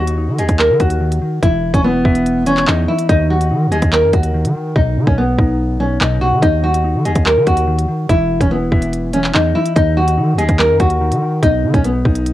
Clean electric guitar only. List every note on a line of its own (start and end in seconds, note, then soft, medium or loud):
0.00 0.79 D#3 medium
0.18 1.22 D#4 medium
0.39 1.43 D#5 medium
0.81 1.00 D#3 medium
1.01 1.21 D#3 medium
1.22 1.42 D#3 medium
1.43 2.46 E3 medium
1.85 2.89 E4 medium
2.05 3.09 E5 loud
2.47 2.67 E3 medium
2.68 2.88 E3 medium
2.89 3.09 E3 medium
3.09 4.12 D#3 medium
3.51 4.55 D#4 medium
3.72 4.76 D#5 loud
4.13 4.33 D#3 medium
4.34 4.54 D#3 medium
4.55 4.76 D#3 medium
4.76 5.79 B2 medium
5.18 6.22 B3 medium
5.38 6.43 D#4 loud
5.80 6.00 B2 medium
6.01 6.21 B2 medium
6.22 6.43 B2 medium
6.43 7.46 D#3 medium
6.84 7.88 D#4 medium
7.05 8.09 D#5 medium
7.47 7.66 D#3 medium
7.67 7.87 D#3 medium
7.88 8.09 D#3 medium
8.10 9.13 E3 medium
8.51 9.55 E4 medium
8.72 9.76 E5 loud
9.14 9.33 E3 medium
9.35 9.54 E3 medium
9.56 9.76 E3 medium
9.76 10.79 D#3 medium
10.18 11.22 D#4 medium
10.39 11.43 D#5 loud
10.80 11.00 D#3 medium
11.01 11.21 D#3 medium
11.22 11.43 D#3 medium
11.42 12.33 B2 medium
11.84 12.33 B3 medium
12.05 12.33 D#4 loud